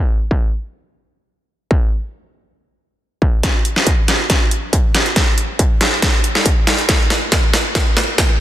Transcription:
0.31 kick medium
1.71 kick loud
3.22 kick medium
3.43 kick medium
3.43 snare soft
3.43 closed hi-hat medium
3.65 closed hi-hat medium
3.76 snare soft
3.87 kick loud
3.87 closed hi-hat medium
4.08 snare soft
4.08 closed hi-hat medium
4.30 kick medium
4.30 snare medium
4.30 closed hi-hat medium
4.51 closed hi-hat medium
4.73 kick loud
4.73 closed hi-hat medium
4.95 snare medium
4.95 closed hi-hat medium
5.06 closed hi-hat soft
5.16 kick medium
5.16 snare medium
5.16 closed hi-hat medium
5.38 closed hi-hat medium
5.59 kick loud
5.59 closed hi-hat medium
5.81 snare medium
5.81 closed hi-hat medium
6.02 kick loud
6.02 snare medium
6.02 closed hi-hat medium
6.24 closed hi-hat medium
6.35 snare medium
6.46 kick loud
6.46 closed hi-hat medium
6.67 snare medium
6.67 closed hi-hat medium
6.78 closed hi-hat soft
6.89 kick medium
6.89 snare medium
6.89 closed hi-hat medium
7.10 snare medium
7.10 closed hi-hat medium
7.32 kick loud
7.32 snare medium
7.32 closed hi-hat medium
7.54 snare medium
7.54 closed hi-hat medium
7.75 kick loud
7.75 snare medium
7.75 closed hi-hat medium
7.97 snare medium
7.97 closed hi-hat medium
8.18 kick loud
8.18 snare medium
8.18 closed hi-hat medium

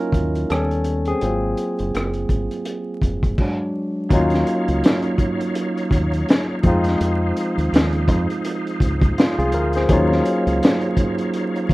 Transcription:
0.00 0.51 F#3 medium
0.00 0.51 A#3 medium
0.00 0.52 C#4 medium
0.00 0.51 D#4 medium
0.00 0.51 E4 medium
0.00 0.51 F4 medium
0.00 0.52 A#4 medium
0.12 0.44 D#2 medium
0.12 kick medium
0.12 closed hi-hat medium
0.35 closed hi-hat soft
0.50 1.12 D#2 medium
0.50 1.00 G3 medium
0.50 1.00 B3 soft
0.50 1.03 C#4 medium
0.50 1.08 A4 medium
0.50 cross-stick loud
0.50 closed hi-hat medium
0.71 closed hi-hat soft
0.84 closed hi-hat medium
1.05 3.35 G#4 medium
1.05 closed hi-hat soft
1.10 1.22 C4 medium
1.21 1.53 G#1 medium
1.21 2.27 F#3 soft
1.21 2.27 A#3 soft
1.21 2.27 C4 soft
1.21 2.27 F4 medium
1.21 closed hi-hat medium
1.57 closed hi-hat medium
1.79 1.92 F#1 medium
1.79 closed hi-hat soft
1.94 2.25 F#1 medium
1.94 cross-stick medium
1.94 closed hi-hat medium
2.14 closed hi-hat soft
2.29 2.48 G#1 medium
2.29 kick medium
2.29 closed hi-hat medium
2.51 closed hi-hat soft
2.65 closed hi-hat medium
3.02 3.33 F1 medium
3.02 kick medium
3.02 closed hi-hat medium
3.23 kick medium
3.23 closed hi-hat soft
3.38 4.08 F#3 medium
3.38 4.08 G#3 soft
3.38 4.08 D4 medium
3.38 kick medium
3.38 crash medium
4.09 4.42 D#2 loud
4.09 6.60 F#3 medium
4.09 6.61 A#3 medium
4.09 9.84 D#4 medium
4.09 6.60 C#5 medium
4.09 9.84 F5 medium
4.09 kick loud
4.09 closed hi-hat medium
4.13 6.61 C#4 medium
4.13 6.61 D#4 medium
4.13 6.62 F4 medium
4.30 snare soft
4.30 closed hi-hat soft
4.47 closed hi-hat medium
4.68 4.81 C#2 medium
4.68 closed hi-hat soft
4.84 snare loud
4.84 closed hi-hat medium
5.02 closed hi-hat soft
5.18 kick medium
5.18 closed hi-hat medium
5.41 closed hi-hat medium
5.55 closed hi-hat medium
5.77 closed hi-hat soft
5.91 6.23 D#2 loud
5.91 kick medium
5.91 closed hi-hat medium
6.13 closed hi-hat soft
6.29 snare loud
6.29 closed hi-hat medium
6.63 6.95 F2 medium
6.63 9.49 F3 medium
6.63 9.50 G#3 medium
6.63 9.50 C4 medium
6.63 9.85 G#4 medium
6.63 9.85 C5 medium
6.63 kick loud
6.63 closed hi-hat medium
6.67 9.50 D#4 medium
6.67 9.14 F4 medium
6.84 snare soft
6.84 closed hi-hat soft
7.00 7.31 F2 loud
7.00 closed hi-hat medium
7.37 closed hi-hat medium
7.58 7.70 D#2 medium
7.58 closed hi-hat soft
7.73 8.08 D#2 medium
7.73 snare loud
7.73 closed hi-hat medium
7.92 closed hi-hat soft
8.08 8.26 F2 medium
8.08 kick medium
8.08 closed hi-hat medium
8.30 closed hi-hat soft
8.45 closed hi-hat medium
8.67 closed hi-hat soft
8.80 9.12 C#2 medium
8.80 kick medium
8.80 closed hi-hat medium
9.02 kick loud
9.02 closed hi-hat soft
9.18 9.37 F4 medium
9.18 snare medium
9.18 closed hi-hat medium
9.38 9.54 C2 medium
9.38 9.53 F4 medium
9.38 9.52 G#4 medium
9.38 closed hi-hat soft
9.52 9.85 D2 medium
9.52 9.73 A#4 medium
9.52 closed hi-hat medium
9.73 10.09 G#4 medium
9.73 10.09 C5 medium
9.73 snare soft
9.73 closed hi-hat soft
9.88 10.20 D#2 loud
9.88 11.74 F#3 medium
9.88 11.74 A#3 medium
9.88 11.74 C#4 medium
9.88 11.74 D#4 medium
9.88 11.74 C#5 medium
9.88 11.74 F5 medium
9.88 kick loud
9.88 closed hi-hat medium
9.93 11.74 F4 medium
10.12 snare soft
10.25 closed hi-hat medium
10.47 10.60 C#2 medium
10.47 closed hi-hat soft
10.63 snare loud
10.63 closed hi-hat medium
10.81 closed hi-hat soft
10.97 kick medium
10.97 closed hi-hat medium
11.18 closed hi-hat soft
11.34 closed hi-hat medium
11.56 closed hi-hat soft
11.69 11.74 D#2 loud
11.69 kick medium
11.69 closed hi-hat medium

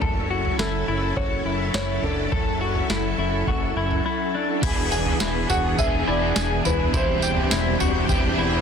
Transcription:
0.01 0.52 F#1 loud
0.01 4.59 F#3 medium
0.01 4.59 C#4 medium
0.01 4.59 E4 medium
0.01 4.59 A4 medium
0.01 0.30 A4 medium
0.01 kick loud
0.01 floor tom loud
0.30 0.59 F#4 medium
0.45 floor tom medium
0.59 0.84 F#1 loud
0.59 0.87 E4 medium
0.59 1.19 A4 medium
0.59 snare medium
0.88 1.13 F#1 medium
0.88 1.17 E4 medium
1.16 1.42 F#1 medium
1.16 1.45 F#4 medium
1.16 1.73 C#5 medium
1.16 kick medium
1.16 floor tom medium
1.45 1.71 F#1 loud
1.45 1.73 E4 medium
1.74 2.00 F#1 medium
1.74 2.03 E4 medium
1.74 2.04 C#5 medium
1.74 snare loud
2.02 2.28 F#1 medium
2.02 2.32 D4 medium
2.02 3.15 A4 medium
2.02 floor tom medium
2.32 2.83 F#1 loud
2.32 2.60 A4 medium
2.32 kick loud
2.32 floor tom loud
2.61 2.90 F#4 medium
2.75 floor tom medium
2.90 3.15 F#1 medium
2.90 3.18 E4 medium
2.90 snare medium
3.18 3.44 F#1 medium
3.18 3.47 E4 medium
3.47 3.73 F#1 medium
3.47 3.76 F#4 medium
3.47 kick medium
3.47 floor tom medium
3.76 4.02 F#1 loud
3.76 4.04 E4 medium
3.91 floor tom medium
4.06 4.34 E4 medium
4.34 4.63 D4 medium
4.62 5.14 E1 loud
4.62 5.77 E3 medium
4.62 8.61 E3 medium
4.62 6.91 B3 medium
4.62 5.78 B3 medium
4.62 8.61 D4 medium
4.62 5.78 D4 medium
4.62 4.92 E4 medium
4.62 6.91 G#4 medium
4.62 kick loud
4.62 floor tom loud
4.62 crash loud
4.62 tambourine medium
4.66 5.79 G#4 medium
4.92 5.20 G#4 medium
4.92 tambourine medium
5.06 floor tom medium
5.20 5.46 E1 loud
5.20 5.49 E4 medium
5.20 snare loud
5.20 tambourine loud
5.50 5.75 E1 medium
5.50 5.78 F#4 medium
5.50 5.80 F#5 loud
5.50 floor tom medium
5.50 tambourine medium
5.78 6.04 E1 loud
5.78 6.07 E3 medium
5.78 6.07 B3 medium
5.78 6.07 D4 medium
5.78 6.07 G#4 medium
5.78 6.05 G#4 medium
5.78 6.08 E5 medium
5.78 kick medium
5.78 floor tom medium
5.78 tambourine medium
6.06 6.33 E1 loud
6.06 6.94 B3 soft
6.06 6.94 D4 soft
6.06 6.36 E4 medium
6.06 6.93 G#4 medium
6.06 6.67 D5 medium
6.36 6.62 E1 loud
6.36 6.65 G#4 medium
6.36 snare loud
6.36 tambourine medium
6.65 6.91 E1 loud
6.65 6.93 E4 medium
6.65 6.95 B4 medium
6.65 floor tom medium
6.65 tambourine medium
6.80 floor tom medium
6.92 7.44 E1 loud
6.92 8.08 E3 medium
6.92 8.08 G3 medium
6.92 8.61 C4 medium
6.92 8.08 C4 medium
6.92 7.22 E4 medium
6.92 8.10 E4 medium
6.92 8.61 G4 medium
6.92 8.06 C5 loud
6.92 kick loud
6.92 floor tom loud
6.92 tambourine medium
7.22 7.51 G4 medium
7.22 tambourine medium
7.37 floor tom medium
7.51 7.77 E1 loud
7.51 7.80 E4 medium
7.51 snare loud
7.51 tambourine medium
7.80 8.06 E1 medium
7.80 8.09 F#4 medium
7.80 floor tom medium
7.80 tambourine medium
8.09 8.34 E1 loud
8.09 8.38 E3 medium
8.09 8.38 G3 medium
8.09 8.38 C4 medium
8.09 8.38 E4 medium
8.09 8.38 G4 medium
8.09 8.36 B4 medium
8.09 kick medium
8.09 floor tom medium
8.09 tambourine medium
8.37 8.61 E1 loud
8.37 8.61 C4 soft
8.37 8.61 E4 medium
8.37 8.61 B4 medium

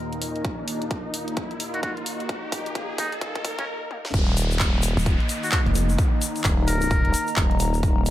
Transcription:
0.00 4.10 D#2 medium
0.00 4.10 A#2 medium
0.00 3.68 A#3 medium
0.00 4.10 A#3 medium
0.00 3.68 D#4 medium
0.00 4.10 D#4 medium
0.00 3.68 D#5 medium
0.00 3.68 A#5 medium
0.00 riser medium
0.13 closed hi-hat soft
0.22 open hi-hat loud
0.36 closed hi-hat soft
0.45 kick loud
0.45 closed hi-hat medium
0.68 open hi-hat loud
0.82 closed hi-hat medium
0.91 kick loud
0.91 closed hi-hat medium
1.14 open hi-hat loud
1.28 closed hi-hat medium
1.37 kick loud
1.37 closed hi-hat medium
1.51 closed hi-hat soft
1.60 open hi-hat loud
1.74 1.80 F#4 medium
1.74 closed hi-hat soft
1.83 1.92 F#4 medium
1.83 kick loud
1.83 closed hi-hat medium
1.97 closed hi-hat soft
2.06 open hi-hat loud
2.20 closed hi-hat soft
2.29 kick loud
2.29 closed hi-hat medium
2.52 kick loud
2.52 open hi-hat loud
2.66 closed hi-hat medium
2.75 kick loud
2.75 closed hi-hat medium
2.98 3.11 D#4 medium
2.98 kick loud
2.98 open hi-hat loud
3.12 closed hi-hat medium
3.21 kick loud
3.21 closed hi-hat medium
3.35 kick medium
3.35 closed hi-hat soft
3.45 kick loud
3.45 open hi-hat loud
3.59 3.64 C#4 medium
3.59 kick medium
3.59 closed hi-hat soft
3.91 high tom medium
4.05 snare medium
4.14 4.59 D#1 loud
4.14 8.10 D#3 medium
4.14 8.10 A#3 medium
4.14 8.10 D#4 medium
4.14 kick loud
4.14 closed hi-hat medium
4.14 downlifter medium
4.14 shaker soft
4.37 open hi-hat loud
4.37 shaker medium
4.43 8.10 D#5 medium
4.51 closed hi-hat medium
4.51 shaker medium
4.59 4.95 D#1 medium
4.59 8.10 D#4 medium
4.59 kick loud
4.59 clap loud
4.59 closed hi-hat medium
4.59 shaker soft
4.82 open hi-hat loud
4.82 shaker loud
4.97 5.18 D#1 loud
4.97 closed hi-hat medium
4.97 shaker medium
5.06 kick loud
5.06 closed hi-hat medium
5.20 closed hi-hat soft
5.29 open hi-hat loud
5.29 shaker loud
5.43 5.49 F#4 medium
5.43 closed hi-hat soft
5.43 shaker medium
5.52 5.61 F#4 medium
5.52 kick loud
5.52 clap loud
5.52 closed hi-hat medium
5.66 5.97 F1 medium
5.66 8.10 A#5 medium
5.66 closed hi-hat soft
5.75 open hi-hat loud
5.75 shaker medium
5.90 closed hi-hat soft
5.90 shaker medium
5.98 kick loud
5.98 closed hi-hat medium
5.98 shaker soft
6.22 open hi-hat loud
6.22 shaker loud
6.36 closed hi-hat medium
6.36 shaker medium
6.44 6.89 D#1 medium
6.44 kick loud
6.44 clap loud
6.44 closed hi-hat medium
6.44 shaker soft
6.68 7.33 A#4 loud
6.68 open hi-hat loud
6.68 shaker medium
6.81 closed hi-hat medium
6.81 shaker medium
6.91 7.03 D#1 loud
6.91 kick loud
6.91 closed hi-hat medium
6.91 shaker soft
7.05 7.12 D#1 loud
7.05 closed hi-hat soft
7.14 open hi-hat loud
7.14 shaker medium
7.27 closed hi-hat soft
7.27 shaker medium
7.36 7.82 D#1 medium
7.36 kick loud
7.36 clap loud
7.36 closed hi-hat medium
7.36 shaker soft
7.51 closed hi-hat soft
7.60 open hi-hat loud
7.60 shaker loud
7.74 closed hi-hat soft
7.74 shaker medium
7.83 8.10 D#1 loud
7.83 kick loud
7.83 closed hi-hat medium
7.83 shaker soft
8.06 open hi-hat loud
8.06 shaker medium

